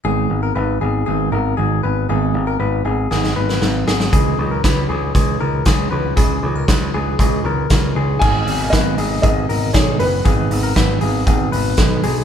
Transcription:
<<
  \new Staff \with { instrumentName = "Upright piano" } { \time 4/4 \key gis \minor \tempo 4 = 118 r1 | r1 | r1 | r1 |
gis''4 dis''4 dis''4 cis''8 b'8~ | b'2~ b'8 r4. | }
  \new Staff \with { instrumentName = "Clean electric guitar" } { \time 4/4 \key gis \minor gis'8. ais'16 b'8 gis'8 gis'8 ais'8 gis'8 b'8 | gis'8. ais'16 b'8 gis'8 gis'8 b'4 gis'8 | gis'8. ais'16 b'8 gis'8 gis'8 ais'8 gis'8 b'8 | gis'8. ais'16 b'8 gis'8 gis'8 ais'4 gis'8 |
gis'8. ais'16 b'8 gis'8 gis'8 ais'8 gis'8 b'8 | gis'8. ais'16 b'8 gis'8 gis'8 b'4 gis'8 | }
  \new Staff \with { instrumentName = "Steel-string acoustic guitar" } { \clef bass \time 4/4 \key gis \minor <gis, dis gis b dis'>8 <gis b dis'>8 <dis gis b dis'>8 <gis b dis'>8 <gis, dis gis b dis'>8 <gis b dis'>8 <dis gis b dis'>8 <gis b dis'>8 | <gis, dis gis b dis'>8 <gis b dis'>8 <dis gis b dis'>8 <gis b dis'>8 <gis, dis gis b dis'>8 <gis b dis'>8 <dis gis b dis'>8 <gis b dis'>8 | <cis e gis dis'>8 <e gis dis'>8 <cis e gis dis'>8 <e gis>8 <cis e gis dis'>8 <e gis dis'>8 <cis e gis dis'>8 <e gis dis'>8 | <cis e gis dis'>8 <e gis dis'>8 <cis e gis dis'>8 <e gis dis'>8 <cis e gis dis'>8 <e gis dis'>8 <cis e gis dis'>8 <e gis dis'>8 |
<gis, dis gis b dis'>8 <gis b dis'>8 <gis, dis gis b dis'>8 <gis b>8 <dis gis b>8 <gis b dis'>8 <gis, dis gis b dis'>8 <gis b dis'>8 | <gis, dis gis b dis'>8 <b dis'>8 <gis, dis gis b dis'>8 <gis b dis'>8 <dis gis b dis'>8 <gis b dis'>8 <gis, dis gis b dis'>8 <gis b dis'>8 | }
  \new Staff \with { instrumentName = "Picked electric bass" } { \clef bass \time 4/4 \key gis \minor gis,,8 gis,,8 gis,,8 gis,,8 gis,,8 gis,,8 gis,,8 gis,,8 | gis,,8 gis,,8 gis,,8 gis,,8 gis,,8 gis,,8 gis,,8 gis,,8 | cis,8 cis,8 cis,8 cis,8 cis,8 cis,8 cis,8 cis,8 | cis,8 cis,8 cis,8 cis,8 cis,8 cis,8 cis,8 cis,8 |
gis,,8 gis,,8 gis,,8 gis,,8 gis,,8 gis,,8 b,,8 fis,,8 | gis,,8 gis,,8 gis,,8 gis,,8 gis,,8 gis,,8 b,,8 b,,8 | }
  \new DrumStaff \with { instrumentName = "Drums" } \drummode { \time 4/4 r4 r4 r4 r4 | r4 r4 sn16 sn8 sn16 sn8 sn16 sn16 | <hh bd>4 <hh bd sn>4 <hh bd>4 <hh bd sn>4 | <hh bd>4 <hh bd sn>4 <hh bd>4 <hh bd sn>4 |
<cymc bd>8 hho8 <hh bd sn>8 hho8 <hh bd>8 hho8 <hh bd sn>8 hho8 | <hh bd>8 hho8 <hh bd sn>8 hho8 <hh bd>8 hho8 <hh bd sn>8 hho8 | }
>>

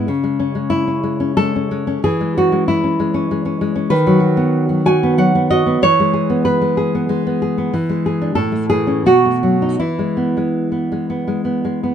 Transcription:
\new Staff \with { instrumentName = "Nylon-string guitar" } { \time 3/4 \key e \major \tempo 4 = 94 << { r4 e'4 a'4 | gis'8 fis'8 e'4. r8 | b'4. gis''8 fis''8 dis''8 | cis''4 b'4. r8 |
r4 a'8 gis'8 fis'4 | e'2 r4 | } \\ { cis16 gis16 cis'16 gis8 cis'16 gis16 cis'16 gis16 cis'16 gis16 cis'16 | e16 gis16 cis'16 gis8 cis'16 gis16 cis'16 gis16 cis'16 gis16 cis'16 | dis16 fis16 fis'16 b8 fis16 fis'16 b16 fis16 b16 fis'16 b16 | e16 gis16 gis'16 b8 gis16 gis'16 b16 gis16 b16 gis'16 b16 |
e16 gis16 gis'16 d'16 a,16 a16 e16 cis'16 b,16 a16 fis16 dis'16 | e16 gis16 b16 gis8 b16 gis16 b16 gis16 b16 gis16 b16 | } >> }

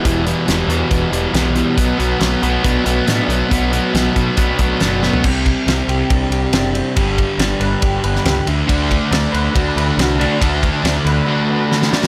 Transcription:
<<
  \new Staff \with { instrumentName = "Clean electric guitar" } { \time 4/4 \key d \mixolydian \tempo 4 = 139 <e g b>8 g8 g8 fis'8 b8 g8 b8 g8 | b,8 fis8 a8 fis'8 d'8 a8 d'8 a8 | b,8 fis8 a8 fis'8 d'8 a8 d'8 a8 | c4 c'8 g'8 d'8 g'8 d'8 c'8 |
g4 d'8 b'8 g'8 b'8 g'8 d8 | d4 d'8 b'8 fis'8 b'8 fis'8 d'8 | d4 d'8 b'8 fis'8 b'8 fis'8 d'8 | }
  \new Staff \with { instrumentName = "Distorted electric guitar" } { \clef bass \time 4/4 \key d \mixolydian <e, b, e>8 <e, b, e>8 <e, b, e>8 <e, b, e>8 <e, b, e>8 <e, b, e>8 <e, b, e>8 <e, b, e>8 | <b, fis b>8 <b, fis b>8 <b, fis b>8 <b, fis b>8 <b, fis b>8 <b, fis b>8 <b, fis b>8 <b, fis b>8 | <b, fis b>8 <b, fis b>8 <b, fis b>8 <b, fis b>8 <b, fis b>8 <b, fis b>8 <b, fis b>8 <b, fis b>8 | <c g c'>1 |
<g, d g>2.~ <g, d g>8 <d a d'>8~ | <d a d'>2.~ <d a d'>8 <d a d'>8~ | <d a d'>2.~ <d a d'>8 r8 | }
  \new Staff \with { instrumentName = "Overdriven electric guitar" } { \clef bass \time 4/4 \key d \mixolydian <e, b, e>8 <e, b, e>8 <e, b, e>8 <e, b, e>8 <e, b, e>8 <e, b, e>8 <e, b, e>8 <e, b, e>8 | <b, fis b>8 <b, fis b>8 <b, fis b>8 <b, fis b>8 <b, fis b>8 <b, fis b>8 <b, fis b>8 <b, fis b>8 | <b, fis b>8 <b, fis b>8 <b, fis b>8 <b, fis b>8 <b, fis b>8 <b, fis b>8 <b, fis b>8 <b, fis b>8 | r1 |
r1 | <d a d'>2 <d a d'>2 | <d a d'>2 <d a d'>2 | }
  \new Staff \with { instrumentName = "Picked electric bass" } { \clef bass \time 4/4 \key d \mixolydian e,,4 e,,8 e,8 e,,8 e,,8 b,,4 | b,,8 b,,8 b,,8 b,,8 b,,8 b,,8 a,8 b,,8 | b,,4 b,,8 b,8 b,,8 b,,8 fis,,4 | c,4 c,8 c,8 c,8 c,8 fis,,4 |
g,,4 g,,8 g,,8 g,,8 g,,8 cis,8 d,8 | d,4 d,8 d,8 d,8 d,8 c,4 | d,4 d,8 d,8 r2 | }
  \new DrumStaff \with { instrumentName = "Drums" } \drummode { \time 4/4 <hh bd>8 hh8 <hh sn>8 hh8 <hh bd>8 hh8 <hh sn>8 hh8 | <hh bd>8 hh8 <hh sn>8 hh8 <hh bd>8 hh8 <hh sn>8 hh8 | <hh bd>8 hh8 <hh sn>8 <hh bd>8 <hh bd>8 <hh bd>8 <hh sn>8 sn16 tomfh16 | <cymc bd>8 <bd cymr>8 <cymr sn>8 cymr8 <bd cymr>8 cymr8 <cymr sn>8 cymr8 |
<bd cymr>8 <bd cymr>8 <cymr sn>8 cymr8 <bd cymr>8 cymr16 sn16 <cymr sn>8 cymr8 | <bd cymr>8 <bd cymr>8 <cymr sn>8 cymr8 <bd cymr>8 cymr8 <cymr sn>8 cymr8 | <bd cymr>8 <bd cymr>8 <cymr sn>8 cymr8 r4 sn16 sn16 sn16 sn16 | }
>>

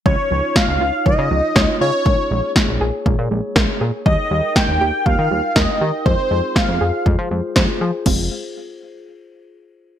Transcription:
<<
  \new Staff \with { instrumentName = "Analog synth lead" } { \time 4/4 \key f \minor \tempo 4 = 120 des''4 f''4 ees''4. des''8~ | des''4 r2. | ees''4 g''4 f''4 ees''4 | c''4 f''4 r2 |
r1 | }
  \new Staff \with { instrumentName = "Glass harmonica" } { \time 4/4 \key f \minor << { des''1~ | des''1 | g''1 | c''1 |
r1 | } \\ { <ees' f'>1 | <bes aes'>1 | <ees' bes'>1 | <f' aes'>1 |
r1 | } >> }
  \new Staff \with { instrumentName = "Synth arpeggio sound" } { \clef bass \time 4/4 \key f \minor f8 f8 r8 f'8 f8 f8 des''8 f'8 | aes8 aes8 r8 aes'8 aes8 aes8 bes'8 aes'8 | g8 g8 r8 g'8 g8 g8 bes'8 g'8 | aes8 aes8 r8 aes'8 aes8 aes8 c''8 aes'8 |
<aes c' f'>8 r2. r8 | }
  \new Staff \with { instrumentName = "Analog synth bass" } { \clef bass \time 4/4 \key f \minor des,16 r16 des,16 r8 des,16 des,16 r16 des,16 des16 des,16 r16 des,16 r16 des16 r16 | bes,,16 r16 bes,,16 r8 bes,,16 bes,,16 r16 bes,,16 bes,16 bes,,16 r16 bes,,16 r16 bes,16 r16 | ees,16 r16 ees,16 r8 ees,16 ees,16 r16 ees,16 ees16 ees,16 r16 ees,16 r16 ees16 r16 | f,16 r16 f,16 r8 f,16 f,16 r16 f,16 f16 f,16 r16 f,16 r16 f16 r16 |
f,,8 r2. r8 | }
  \new DrumStaff \with { instrumentName = "Drums" } \drummode { \time 4/4 bd4 <bd sn>4 bd4 <bd sn>4 | bd4 <bd sn>4 bd4 <bd sn>4 | bd4 <bd sn>4 bd4 <bd sn>4 | bd4 <bd sn>4 bd4 <bd sn>4 |
<cymc bd>4 r4 r4 r4 | }
>>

